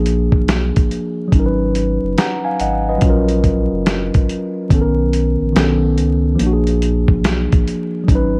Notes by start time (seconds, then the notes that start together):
Already playing: A#1 F3 A#3 D4 G#4
0.06 closed hi-hat
0.32 B1, kick
0.48 snare, closed hi-hat
0.76 kick, closed hi-hat
0.91 closed hi-hat
1.28 F#3
1.32 G#1 C#4 D#4, kick, closed hi-hat
1.40 A#4
1.46 B4
1.75 closed hi-hat
2.04 F#1
2.18 F#5 A#5, snare, closed hi-hat
2.44 F5 G#5
2.59 G#1 D#5 F#5, closed hi-hat
2.89 B4 D#5
2.98 F#3 C#4, kick, closed hi-hat
3.02 A#1 F4
3.10 A#4
3.29 closed hi-hat
3.44 kick, closed hi-hat
3.73 F#1
3.86 snare, closed hi-hat
4.14 kick, closed hi-hat
4.29 closed hi-hat
4.69 B1 D#3 B3 C#4, kick, closed hi-hat
4.75 A4
4.81 A#4
5.13 closed hi-hat
5.42 A#1
5.53 B1 D#3 B3 C#4, snare, closed hi-hat
5.59 A4
5.98 C#2, closed hi-hat
6.35 F3 A#3
6.39 A#1 D4, closed hi-hat
6.47 F#4
6.53 G#4
6.67 closed hi-hat
6.82 closed hi-hat
7.08 B1, kick
7.24 snare, closed hi-hat
7.52 kick, closed hi-hat
7.68 closed hi-hat
8.04 F#3 C#4
8.08 G#1 D#4, kick, closed hi-hat
8.15 B4